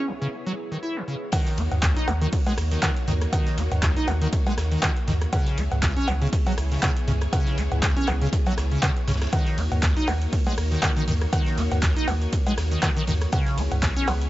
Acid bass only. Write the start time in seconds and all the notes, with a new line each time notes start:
0.08 C#3
0.22 C#3
0.46 F#3
0.72 D#3
0.83 E4
0.97 C#3
1.08 C#3
1.33 D#3
1.58 D#4
1.83 D#2
1.97 D#4
2.08 D#3
2.22 D#3
2.47 G#3
2.72 D#3
2.83 D#3
3.08 D#3
3.33 D#3
3.58 D#4
3.83 D#2
3.97 D#4
4.08 D#3
4.22 D#3
4.47 G#3
4.72 D#3
4.83 D#3
5.08 D#3
5.33 C#3
5.58 C#4
5.83 C#2
5.97 C#4
6.08 C#3
6.22 C#3
6.47 F#3
6.72 C#3
6.83 C#3
7.08 C#3
7.33 C#3
7.58 C#4
7.83 C#2
7.97 C#4
8.08 C#3
8.22 C#3
8.47 F#3
8.72 C#3
8.83 C#3
9.08 C#3
9.33 D#3
9.58 D#4
9.83 D#2
9.97 D#4
10.08 D#3
10.47 G#3
10.72 D#3
10.83 D#3
10.97 D#3
11.08 D#3
11.33 D#3
11.58 D#4
11.83 D#2
11.97 D#4
12.08 D#3
12.47 G#3
12.72 D#3
12.83 D#3
12.96 D#3
13.08 D#3
13.33 C#3
13.58 C#4
13.83 C#2
13.97 C#4
14.08 C#3